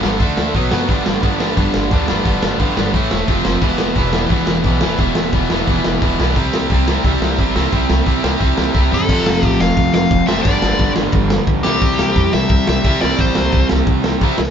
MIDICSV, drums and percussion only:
0, 0, Header, 1, 2, 480
1, 0, Start_track
1, 0, Tempo, 341491
1, 1255, Time_signature, 4, 2, 24, 8
1, 20387, End_track
2, 0, Start_track
2, 0, Title_t, "Drums"
2, 43, Note_on_c, 9, 38, 116
2, 184, Note_off_c, 9, 38, 0
2, 283, Note_on_c, 9, 46, 57
2, 284, Note_on_c, 9, 36, 120
2, 424, Note_off_c, 9, 46, 0
2, 425, Note_off_c, 9, 36, 0
2, 525, Note_on_c, 9, 38, 104
2, 666, Note_off_c, 9, 38, 0
2, 766, Note_on_c, 9, 46, 57
2, 768, Note_on_c, 9, 36, 110
2, 907, Note_off_c, 9, 46, 0
2, 908, Note_off_c, 9, 36, 0
2, 1004, Note_on_c, 9, 38, 111
2, 1145, Note_off_c, 9, 38, 0
2, 1248, Note_on_c, 9, 46, 64
2, 1249, Note_on_c, 9, 36, 115
2, 1389, Note_off_c, 9, 36, 0
2, 1389, Note_off_c, 9, 46, 0
2, 1490, Note_on_c, 9, 38, 118
2, 1630, Note_off_c, 9, 38, 0
2, 1731, Note_on_c, 9, 36, 107
2, 1731, Note_on_c, 9, 46, 59
2, 1871, Note_off_c, 9, 46, 0
2, 1872, Note_off_c, 9, 36, 0
2, 1973, Note_on_c, 9, 38, 103
2, 2113, Note_off_c, 9, 38, 0
2, 2206, Note_on_c, 9, 46, 64
2, 2210, Note_on_c, 9, 36, 105
2, 2346, Note_off_c, 9, 46, 0
2, 2350, Note_off_c, 9, 36, 0
2, 2444, Note_on_c, 9, 38, 105
2, 2584, Note_off_c, 9, 38, 0
2, 2681, Note_on_c, 9, 46, 60
2, 2690, Note_on_c, 9, 36, 109
2, 2822, Note_off_c, 9, 46, 0
2, 2830, Note_off_c, 9, 36, 0
2, 2925, Note_on_c, 9, 38, 106
2, 3066, Note_off_c, 9, 38, 0
2, 3166, Note_on_c, 9, 46, 58
2, 3170, Note_on_c, 9, 36, 114
2, 3306, Note_off_c, 9, 46, 0
2, 3311, Note_off_c, 9, 36, 0
2, 3409, Note_on_c, 9, 38, 120
2, 3550, Note_off_c, 9, 38, 0
2, 3646, Note_on_c, 9, 46, 54
2, 3652, Note_on_c, 9, 36, 112
2, 3787, Note_off_c, 9, 46, 0
2, 3793, Note_off_c, 9, 36, 0
2, 3895, Note_on_c, 9, 38, 112
2, 4036, Note_off_c, 9, 38, 0
2, 4131, Note_on_c, 9, 46, 58
2, 4133, Note_on_c, 9, 36, 110
2, 4272, Note_off_c, 9, 46, 0
2, 4274, Note_off_c, 9, 36, 0
2, 4373, Note_on_c, 9, 38, 112
2, 4514, Note_off_c, 9, 38, 0
2, 4612, Note_on_c, 9, 46, 57
2, 4613, Note_on_c, 9, 36, 108
2, 4753, Note_off_c, 9, 36, 0
2, 4753, Note_off_c, 9, 46, 0
2, 4847, Note_on_c, 9, 38, 105
2, 4987, Note_off_c, 9, 38, 0
2, 5081, Note_on_c, 9, 49, 93
2, 5087, Note_on_c, 9, 36, 114
2, 5221, Note_off_c, 9, 49, 0
2, 5228, Note_off_c, 9, 36, 0
2, 5317, Note_on_c, 9, 38, 118
2, 5457, Note_off_c, 9, 38, 0
2, 5553, Note_on_c, 9, 46, 59
2, 5566, Note_on_c, 9, 36, 102
2, 5694, Note_off_c, 9, 46, 0
2, 5707, Note_off_c, 9, 36, 0
2, 5803, Note_on_c, 9, 38, 114
2, 5943, Note_off_c, 9, 38, 0
2, 6038, Note_on_c, 9, 46, 57
2, 6048, Note_on_c, 9, 36, 111
2, 6179, Note_off_c, 9, 46, 0
2, 6188, Note_off_c, 9, 36, 0
2, 6283, Note_on_c, 9, 38, 109
2, 6423, Note_off_c, 9, 38, 0
2, 6517, Note_on_c, 9, 46, 59
2, 6529, Note_on_c, 9, 36, 104
2, 6657, Note_off_c, 9, 46, 0
2, 6669, Note_off_c, 9, 36, 0
2, 6758, Note_on_c, 9, 38, 112
2, 6898, Note_off_c, 9, 38, 0
2, 6994, Note_on_c, 9, 46, 60
2, 7009, Note_on_c, 9, 36, 114
2, 7135, Note_off_c, 9, 46, 0
2, 7150, Note_off_c, 9, 36, 0
2, 7241, Note_on_c, 9, 38, 123
2, 7382, Note_off_c, 9, 38, 0
2, 7482, Note_on_c, 9, 46, 54
2, 7491, Note_on_c, 9, 36, 110
2, 7622, Note_off_c, 9, 46, 0
2, 7631, Note_off_c, 9, 36, 0
2, 7729, Note_on_c, 9, 38, 107
2, 7870, Note_off_c, 9, 38, 0
2, 7972, Note_on_c, 9, 46, 58
2, 7976, Note_on_c, 9, 36, 103
2, 8112, Note_off_c, 9, 46, 0
2, 8117, Note_off_c, 9, 36, 0
2, 8215, Note_on_c, 9, 38, 114
2, 8356, Note_off_c, 9, 38, 0
2, 8461, Note_on_c, 9, 36, 110
2, 8466, Note_on_c, 9, 46, 58
2, 8601, Note_off_c, 9, 36, 0
2, 8607, Note_off_c, 9, 46, 0
2, 8710, Note_on_c, 9, 38, 104
2, 8851, Note_off_c, 9, 38, 0
2, 8943, Note_on_c, 9, 36, 117
2, 8951, Note_on_c, 9, 46, 64
2, 9083, Note_off_c, 9, 36, 0
2, 9091, Note_off_c, 9, 46, 0
2, 9186, Note_on_c, 9, 38, 117
2, 9326, Note_off_c, 9, 38, 0
2, 9420, Note_on_c, 9, 36, 102
2, 9425, Note_on_c, 9, 46, 60
2, 9561, Note_off_c, 9, 36, 0
2, 9566, Note_off_c, 9, 46, 0
2, 9668, Note_on_c, 9, 38, 104
2, 9808, Note_off_c, 9, 38, 0
2, 9902, Note_on_c, 9, 36, 108
2, 9908, Note_on_c, 9, 46, 59
2, 10043, Note_off_c, 9, 36, 0
2, 10048, Note_off_c, 9, 46, 0
2, 10149, Note_on_c, 9, 38, 110
2, 10290, Note_off_c, 9, 38, 0
2, 10382, Note_on_c, 9, 36, 109
2, 10388, Note_on_c, 9, 46, 62
2, 10523, Note_off_c, 9, 36, 0
2, 10528, Note_off_c, 9, 46, 0
2, 10623, Note_on_c, 9, 38, 106
2, 10764, Note_off_c, 9, 38, 0
2, 10861, Note_on_c, 9, 36, 107
2, 10864, Note_on_c, 9, 46, 60
2, 11002, Note_off_c, 9, 36, 0
2, 11004, Note_off_c, 9, 46, 0
2, 11098, Note_on_c, 9, 38, 115
2, 11238, Note_off_c, 9, 38, 0
2, 11335, Note_on_c, 9, 46, 53
2, 11336, Note_on_c, 9, 36, 101
2, 11475, Note_off_c, 9, 46, 0
2, 11477, Note_off_c, 9, 36, 0
2, 11582, Note_on_c, 9, 38, 108
2, 11722, Note_off_c, 9, 38, 0
2, 11816, Note_on_c, 9, 36, 105
2, 11818, Note_on_c, 9, 46, 61
2, 11956, Note_off_c, 9, 36, 0
2, 11958, Note_off_c, 9, 46, 0
2, 12053, Note_on_c, 9, 38, 109
2, 12193, Note_off_c, 9, 38, 0
2, 12295, Note_on_c, 9, 36, 104
2, 12295, Note_on_c, 9, 38, 58
2, 12435, Note_off_c, 9, 36, 0
2, 12436, Note_off_c, 9, 38, 0
2, 12543, Note_on_c, 9, 43, 86
2, 12684, Note_off_c, 9, 43, 0
2, 12775, Note_on_c, 9, 36, 120
2, 12781, Note_on_c, 9, 49, 127
2, 12915, Note_off_c, 9, 36, 0
2, 12921, Note_off_c, 9, 49, 0
2, 13020, Note_on_c, 9, 38, 125
2, 13161, Note_off_c, 9, 38, 0
2, 13253, Note_on_c, 9, 36, 114
2, 13255, Note_on_c, 9, 51, 75
2, 13393, Note_off_c, 9, 36, 0
2, 13396, Note_off_c, 9, 51, 0
2, 13500, Note_on_c, 9, 38, 113
2, 13641, Note_off_c, 9, 38, 0
2, 13730, Note_on_c, 9, 36, 119
2, 13734, Note_on_c, 9, 51, 82
2, 13871, Note_off_c, 9, 36, 0
2, 13875, Note_off_c, 9, 51, 0
2, 13970, Note_on_c, 9, 38, 125
2, 14110, Note_off_c, 9, 38, 0
2, 14208, Note_on_c, 9, 51, 89
2, 14210, Note_on_c, 9, 36, 108
2, 14349, Note_off_c, 9, 51, 0
2, 14350, Note_off_c, 9, 36, 0
2, 14457, Note_on_c, 9, 38, 119
2, 14597, Note_off_c, 9, 38, 0
2, 14684, Note_on_c, 9, 51, 79
2, 14690, Note_on_c, 9, 36, 123
2, 14824, Note_off_c, 9, 51, 0
2, 14831, Note_off_c, 9, 36, 0
2, 14931, Note_on_c, 9, 38, 121
2, 15071, Note_off_c, 9, 38, 0
2, 15170, Note_on_c, 9, 36, 109
2, 15171, Note_on_c, 9, 51, 74
2, 15310, Note_off_c, 9, 36, 0
2, 15312, Note_off_c, 9, 51, 0
2, 15401, Note_on_c, 9, 38, 111
2, 15542, Note_off_c, 9, 38, 0
2, 15633, Note_on_c, 9, 51, 77
2, 15646, Note_on_c, 9, 36, 125
2, 15773, Note_off_c, 9, 51, 0
2, 15786, Note_off_c, 9, 36, 0
2, 15888, Note_on_c, 9, 38, 126
2, 16028, Note_off_c, 9, 38, 0
2, 16123, Note_on_c, 9, 51, 81
2, 16127, Note_on_c, 9, 36, 120
2, 16263, Note_off_c, 9, 51, 0
2, 16268, Note_off_c, 9, 36, 0
2, 16367, Note_on_c, 9, 38, 108
2, 16508, Note_off_c, 9, 38, 0
2, 16611, Note_on_c, 9, 36, 118
2, 16613, Note_on_c, 9, 51, 79
2, 16752, Note_off_c, 9, 36, 0
2, 16753, Note_off_c, 9, 51, 0
2, 16854, Note_on_c, 9, 38, 115
2, 16995, Note_off_c, 9, 38, 0
2, 17092, Note_on_c, 9, 36, 103
2, 17092, Note_on_c, 9, 51, 74
2, 17232, Note_off_c, 9, 36, 0
2, 17232, Note_off_c, 9, 51, 0
2, 17332, Note_on_c, 9, 38, 111
2, 17472, Note_off_c, 9, 38, 0
2, 17558, Note_on_c, 9, 51, 83
2, 17569, Note_on_c, 9, 36, 124
2, 17698, Note_off_c, 9, 51, 0
2, 17710, Note_off_c, 9, 36, 0
2, 17815, Note_on_c, 9, 38, 127
2, 17955, Note_off_c, 9, 38, 0
2, 18056, Note_on_c, 9, 36, 111
2, 18056, Note_on_c, 9, 51, 91
2, 18196, Note_off_c, 9, 36, 0
2, 18197, Note_off_c, 9, 51, 0
2, 18291, Note_on_c, 9, 38, 113
2, 18431, Note_off_c, 9, 38, 0
2, 18533, Note_on_c, 9, 51, 84
2, 18538, Note_on_c, 9, 36, 120
2, 18674, Note_off_c, 9, 51, 0
2, 18679, Note_off_c, 9, 36, 0
2, 18769, Note_on_c, 9, 38, 125
2, 18910, Note_off_c, 9, 38, 0
2, 19007, Note_on_c, 9, 51, 72
2, 19016, Note_on_c, 9, 36, 112
2, 19147, Note_off_c, 9, 51, 0
2, 19156, Note_off_c, 9, 36, 0
2, 19247, Note_on_c, 9, 38, 117
2, 19387, Note_off_c, 9, 38, 0
2, 19491, Note_on_c, 9, 51, 72
2, 19496, Note_on_c, 9, 36, 112
2, 19631, Note_off_c, 9, 51, 0
2, 19637, Note_off_c, 9, 36, 0
2, 19734, Note_on_c, 9, 38, 121
2, 19875, Note_off_c, 9, 38, 0
2, 19978, Note_on_c, 9, 51, 75
2, 19979, Note_on_c, 9, 36, 112
2, 20118, Note_off_c, 9, 51, 0
2, 20119, Note_off_c, 9, 36, 0
2, 20212, Note_on_c, 9, 38, 120
2, 20352, Note_off_c, 9, 38, 0
2, 20387, End_track
0, 0, End_of_file